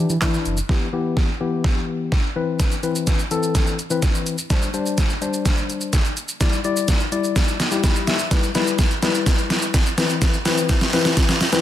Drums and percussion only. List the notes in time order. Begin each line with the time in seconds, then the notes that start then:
0.10 shaker
0.21 kick, snare, clap, closed hi-hat, shaker
0.34 shaker
0.46 closed hi-hat, shaker
0.57 shaker
0.69 kick, snare
1.17 kick, snare
1.64 kick, snare
2.12 kick, snare
2.60 kick, snare, closed hi-hat, shaker
2.71 shaker
2.83 closed hi-hat, shaker
2.95 shaker
3.07 kick, snare, closed hi-hat, shaker
3.19 shaker
3.31 closed hi-hat, shaker
3.43 shaker
3.55 kick, snare, closed hi-hat, shaker
3.67 shaker
3.79 closed hi-hat, shaker
3.90 shaker
4.02 kick, snare, closed hi-hat, shaker
4.15 shaker
4.26 closed hi-hat, shaker
4.38 shaker
4.50 kick, snare, closed hi-hat, shaker
4.62 shaker
4.74 closed hi-hat, shaker
4.86 shaker
4.98 kick, snare, closed hi-hat, shaker
5.10 shaker
5.22 closed hi-hat, shaker
5.34 shaker
5.46 kick, snare, closed hi-hat, shaker
5.57 shaker
5.70 closed hi-hat, shaker
5.81 shaker
5.93 kick, snare, closed hi-hat, shaker
6.05 shaker
6.17 closed hi-hat, shaker
6.28 shaker
6.41 kick, snare, closed hi-hat, shaker
6.53 shaker
6.64 closed hi-hat, shaker
6.77 shaker
6.88 kick, snare, closed hi-hat, shaker
7.00 shaker
7.12 closed hi-hat, shaker
7.24 shaker
7.36 kick, snare, closed hi-hat, shaker
7.48 shaker
7.60 snare, closed hi-hat, shaker
7.71 shaker
7.84 kick, snare, closed hi-hat, shaker
7.96 shaker
8.07 snare, closed hi-hat, shaker
8.19 shaker
8.31 kick, snare, closed hi-hat, shaker
8.43 shaker
8.55 snare, closed hi-hat, shaker
8.67 shaker
8.79 kick, snare, closed hi-hat, shaker
8.91 shaker
9.03 snare, closed hi-hat, shaker
9.15 shaker
9.26 kick, snare, closed hi-hat, shaker
9.38 shaker
9.50 snare, closed hi-hat, shaker
9.62 shaker
9.74 kick, snare, closed hi-hat, shaker
9.86 shaker
9.98 snare, closed hi-hat, shaker
10.09 shaker
10.22 kick, snare, closed hi-hat, shaker
10.34 shaker
10.45 snare, open hi-hat, shaker
10.58 shaker
10.69 kick, snare, closed hi-hat, shaker
10.81 snare, shaker
10.93 snare, open hi-hat, shaker
11.05 snare, shaker
11.17 kick, snare, closed hi-hat, shaker
11.29 snare, shaker
11.41 snare, open hi-hat, shaker
11.52 snare, shaker